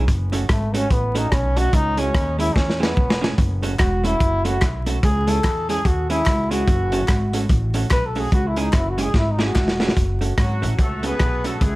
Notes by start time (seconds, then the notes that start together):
0.08 F#1, kick, closed hi-hat
0.32 A3 C#4 F#4 A4, closed hi-hat
0.49 G#1 A3, kick, cross-stick, closed hi-hat
0.74 A3 C#4 F#4 A4, closed hi-hat
0.90 A1 B3, kick, closed hi-hat
1.15 A3 C#4 D#4 F#4 A4, closed hi-hat
1.32 B1 C#4, kick, cross-stick, closed hi-hat
1.56 A3 C#4 F#4 A4, closed hi-hat
1.73 C#2 D#4, kick, closed hi-hat
1.97 G#3 C#4 E4 G#4, closed hi-hat
2.15 D#2, kick, cross-stick, closed hi-hat
2.39 G#3 C#4 E4 G#4, closed hi-hat
2.56 E2 C#4, kick, snare
2.70 snare
2.80 G#3 B3 C#4 E4 G#4, snare
2.97 E1, kick
3.10 snare
3.21 G#3 C#4 E4 G#4, snare
3.38 F#1, kick, closed hi-hat
3.62 A3 C#4 F#4 A4, closed hi-hat
3.79 E1 F#4, kick, cross-stick, clap, closed hi-hat
4.04 A3 C#4 E4 F#4 A4, closed hi-hat
4.20 F#1, kick, closed hi-hat
4.45 A3 C#4 F#4 A4, closed hi-hat
4.61 B1, kick, cross-stick, clap, closed hi-hat
4.86 A3 C#4 F#4 A4, closed hi-hat
5.03 C#2 G#4, kick, closed hi-hat
5.27 G#3 C#4 E4 G#4 A4, closed hi-hat
5.44 E2, kick, cross-stick, clap, closed hi-hat
5.69 G#3 C#4 E4 G#4, closed hi-hat
5.85 D#2 F#4, kick, closed hi-hat
6.10 G#3 C#4 E4 G#4, closed hi-hat
6.26 C#2, kick, cross-stick, clap, closed hi-hat
6.51 G#3 C#4 E4 F#4 G#4, closed hi-hat
6.68 F#1, kick, closed hi-hat
6.92 A3 C#4 F#4 A4, closed hi-hat
7.08 G#1, kick, cross-stick, clap, closed hi-hat
7.33 A3 C#4 F#4 A4, closed hi-hat
7.49 A1, kick, closed hi-hat
7.74 A3 C#4 F#4 A4, closed hi-hat
7.90 B1 B4, kick, cross-stick, clap, closed hi-hat
8.06 A4
8.15 A3 C#4 F#4 G#4 A4, open hi-hat
8.32 C#2 F#4, kick, closed hi-hat
8.48 E4
8.56 G#3 C#4 E4 G#4, closed hi-hat
8.61 D#4
8.73 F#1 E4, kick, cross-stick, clap, closed hi-hat
8.89 F#4
8.98 G#3 C#4 E4 G#4, closed hi-hat
9.03 G#4
9.14 G#1 E4, kick, snare
9.31 D#4
9.39 G#3 C#4 E4 G#4, snare
9.45 F#4
9.55 E1, kick, snare, clap
9.68 snare
9.80 G#3 C#4 E4 G#4, snare
9.88 snare
9.97 F#1, kick, closed hi-hat
10.21 A3 C#4 F#4 A4, closed hi-hat
10.38 G#1 F#3 C#4 F#4, kick, cross-stick, closed hi-hat
10.62 A1 A3 C#4 F#4 A4, closed hi-hat
10.79 C#2 A3 F#4 A4, kick, closed hi-hat
11.03 A3 B3 C#4 F#4 G#4 A4 B4, closed hi-hat
11.20 B1, kick, cross-stick, closed hi-hat
11.44 A3 C#4 F#4 A4, closed hi-hat
11.61 C#2 G#3 E4 G#4, kick, closed hi-hat